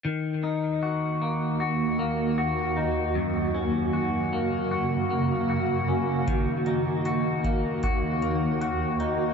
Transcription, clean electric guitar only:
\new Staff \with { instrumentName = "Clean electric guitar" } { \time 4/4 \key dis \minor \tempo 4 = 77 dis8 dis'8 fis'8 ais8 fis'8 ais8 fis'8 dis'8 | fis,8 cis'8 fis'8 ais8 fis'8 ais8 fis'8 cis'8 | dis8 dis'8 fis'8 ais8 fis'8 ais8 fis'8 dis'8 | }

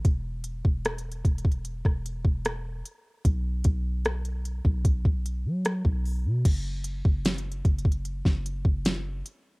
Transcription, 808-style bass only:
\new Staff \with { instrumentName = "808-style bass" } { \clef bass \time 4/4 \key b \mixolydian \tempo 4 = 75 e,,8. e,,8. e,,8. e,,8 e,,8. r8 | b,,8 b,,4~ b,,16 b,,4 fis8 b,,8 b,16 | fis,,8. fis,,8. fis,,8. fis,,8 fis,,8. r8 | }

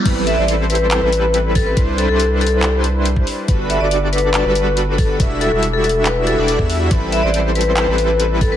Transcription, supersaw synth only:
\new Staff \with { instrumentName = "Supersaw synth" } { \time 4/4 \key a \dorian \tempo 4 = 140 <g c' e' a' b'>8. <g c' e' a' c''>4. <g c' e' a' b'>4.~ <g c' e' a' b'>16 | <g d' e' b' c''>8. <g d' e' b' c''>2~ <g d' e' b' c''>8. r8 | <g d' fis' a' b'>8. <g d' fis' a' d''>4. <g d' fis' a' b'>4.~ <g d' fis' a' b'>16 | <g d' e' fis' e''>8. <g d' e' fis' e''>2 <g d' e' fis' d''>8 <g d' e' fis' e''>8. |
<g c' e' a' b'>8. <g c' e' a' c''>4. <g c' e' a' b'>4.~ <g c' e' a' b'>16 | }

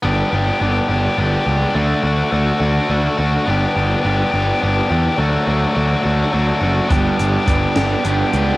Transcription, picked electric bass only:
\new Staff \with { instrumentName = "Picked electric bass" } { \clef bass \time 6/8 \key g \major \tempo 4. = 70 g,,8 g,,8 g,,8 g,,8 g,,8 cis,8 | d,8 d,8 d,8 d,8 d,8 d,8 | g,,8 g,,8 g,,8 g,,8 g,,8 e,8 | d,8 d,8 d,8 d,8 d,8 fis,,8 |
g,,8 g,,8 g,,8 g,,8 g,,8 cis,8 | }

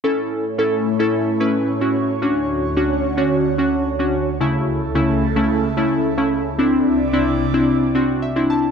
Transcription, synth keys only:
\new Staff \with { instrumentName = "Synth keys" } { \time 4/4 \key a \major \tempo 4 = 110 << { r1 | r1 | r1 | r2. e''8 a''8 | } \\ { <cis' e' a'>8. r16 <cis' e' a'>8 r16 <cis' e' a'>8 r16 <cis' e' b'>8 r16 <cis' e' fis'>8 r16 | <cis' d' fis'>8. r16 <cis' d' fis'>8 r16 <cis' d' fis'>8 r16 <cis' d' fis'>8 r16 <cis' d' fis'>8 r16 | <cis a cis' e'>8. r16 <cis a cis' e'>8 r16 <cis a cis' e'>8 r16 <cis a cis' e'>8 r16 <cis a cis' e'>8 r16 | <c' d' e'>8. r16 <c' d' e'>8 r16 <c' d' e'>8 r16 <c' d' fis'>8 r16 <c' d' e'>8 r16 | } >> }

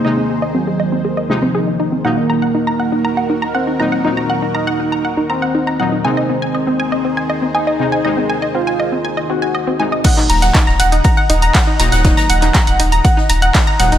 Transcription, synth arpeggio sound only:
\new Staff \with { instrumentName = "Synth arpeggio sound" } { \time 4/4 \key ees \dorian \tempo 4 = 120 ees''16 c'16 aes'16 ees''16 c'16 aes'16 ees''16 c'16 aes'16 ees''16 ees'16 c'16 aes'16 ees'16 ees'16 c'16 | ges''16 ees'16 bes''16 ges''16 ees'16 bes''16 ges''16 ees'16 bes''16 ges''16 ees'16 bes''16 ges''16 ees'16 bes''16 ges''16 | ees'16 bes''16 ges''16 ees'16 bes''16 ges''16 ees'16 bes''16 ges''16 ees'16 bes''16 ges''16 ees'16 bes''16 ges''16 ees'16 | aes''16 ees''16 c'16 aes''16 ees''16 c'16 aes''16 ees''16 c'16 aes''16 ees''16 c'16 aes''16 ees''16 c'16 aes''16 |
ees''16 c'16 aes''16 ees''16 c'16 aes''16 ees''16 c'16 aes''16 ees''16 c'16 aes''16 ees''16 c'16 aes''16 ees''16 | <ges'' ges'''>16 <ees' ees''>16 <bes'' bes'''>16 <ges'' ges'''>16 <ees' ees''>16 <bes'' bes'''>16 <ges'' ges'''>16 <ees' ees''>16 <bes'' bes'''>16 <ges'' ges'''>16 <ees' ees''>16 <bes'' bes'''>16 <ges'' ges'''>16 <ees' ees''>16 <bes'' bes'''>16 <ges'' ges'''>16 | <ees' ees''>16 <bes'' bes'''>16 <ges'' ges'''>16 <ees' ees''>16 <bes'' bes'''>16 <ges'' ges'''>16 <ees' ees''>16 <bes'' bes'''>16 <ges'' ges'''>16 <ees' ees''>16 <bes'' bes'''>16 <ges'' ges'''>16 <ees' ees''>16 <bes'' bes'''>16 <ges'' ges'''>16 <ees' ees''>16 | }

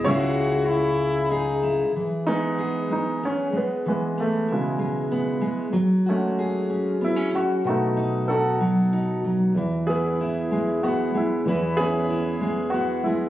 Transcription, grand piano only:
<<
  \new Staff \with { instrumentName = "Grand piano" } { \time 3/4 \key cis \minor \tempo 4 = 95 cis''2 r4 | r8 dis'4 dis'8 cis'8 b8 | b8 a8 gis4. r8 | r8 cis'4. e'8 fis'8 |
fis'4 a'4. r8 | r8 gis'4. fis'8 e'8 | r8 gis'4. fis'8 e'8 | }
  \new Staff \with { instrumentName = "Grand piano" } { \time 3/4 \key cis \minor e'2 r4 | r8 <gis b>4. r4 | gis4 <b, cis>4. r8 | r8 <gis a>4. r4 |
<a dis'>4 <dis' fis'>4. r8 | r8 <b e'>4. r4 | r8 <b cis'>4. r4 | }
>>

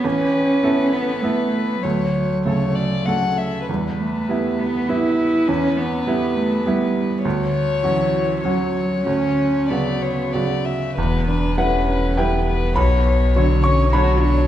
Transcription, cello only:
\new Staff \with { instrumentName = "Cello" } { \time 3/4 \key e \dorian \tempo 4 = 100 cis'4. b8 a4 | fis2~ fis8 r8 | g8 a4 b8 e'4 | cis'8 b4 a8 g4 |
r4 e4 fis4 | cis'4 b4. r8 | b8 d'8 cis'4 b4~ | b4 d'8 cis'8 fis'8 d'8 | }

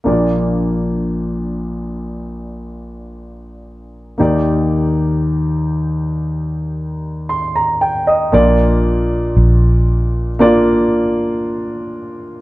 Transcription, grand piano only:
<<
  \new Staff \with { instrumentName = "Grand piano" } { \time 4/4 \key bes \major \tempo 4 = 58 << { r1 | r2. c'''16 bes''16 g''16 ees''16~ | ees''16 r2. r8. | } \\ { <bes d' f' d''>1 | <bes ees' g' d''>1 | <bes d' f' d''>2 <bes d' f' d''>2 | } >> }
  \new Staff \with { instrumentName = "Grand piano" } { \clef bass \time 4/4 \key bes \major <bes,, bes,>1 | <ees, ees>1 | bes,4. r2 r8 | }
>>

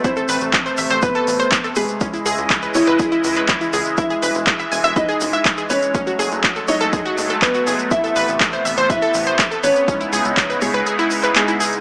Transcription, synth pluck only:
\new Staff \with { instrumentName = "Synth pluck" } { \time 4/4 \key a \lydian \tempo 4 = 122 e'16 a'16 b'16 r8 c''16 e''16 c''16 b'16 a'16 r16 c''16 r16 a'16 b'16 r16 | cis'16 e'16 gis'16 r8 b'16 cis''16 b'16 gis'16 e'16 r16 b'16 r16 e'16 gis'16 r16 | e'16 gis'16 b'16 r8 e''16 gis''16 e''16 b'16 gis'16 r16 e''16 r16 gis'16 b'16 r16 | cis'16 fis'16 gis'16 r8 a'16 cis''16 a'16 gis'16 fis'16 r16 a'16 r16 fis'16 gis'16 r16 |
e'16 a'16 b'16 r8 c''16 e''16 c''16 b'16 a'16 r16 c''16 r16 a'16 b'16 r16 | cis'16 e'16 gis'16 r8 b'16 cis''16 b'16 gis'16 e'16 r16 b'16 r16 e'16 gis'16 r16 | }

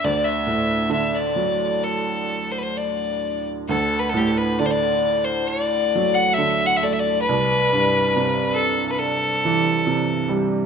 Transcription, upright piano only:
\new Staff \with { instrumentName = "Upright piano" } { \clef bass \time 4/4 \key d \mixolydian \tempo 4 = 68 d,8 a,8 d8 fis2 r8 | d,8 a,8 d4. fis8 d8 a8 | c,8 g,8 c4. e8 c8 g8 | }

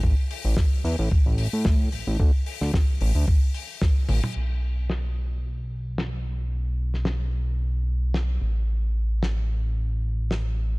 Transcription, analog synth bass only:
\new Staff \with { instrumentName = "Analog synth bass" } { \clef bass \time 4/4 \key d \major \tempo 4 = 111 a,,16 r8 a,,16 r8 e,16 a,,16 a,,16 a,,8 a,8. a,,16 a,,16 | d,16 r8 d,16 r8 a,,16 d,16 r4. a,,16 r16 | b,,1~ | b,,2.~ b,,8 a,,8~ |
a,,1 | }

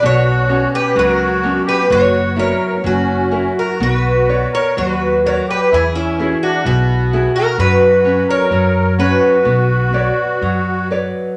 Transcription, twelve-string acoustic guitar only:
\new Staff \with { instrumentName = "Twelve-string acoustic guitar" } { \time 2/4 \key b \minor \tempo 4 = 64 cis''8. b'16 ais'8. b'16 | cis''8 cis''8 fis'8. ais'16 | b'8. cis''16 b'8 ais'16 b'16 | gis'16 e'8 fis'16 fis'8. ais'16 |
b'8. cis''8. b'8~ | b'4. r8 | }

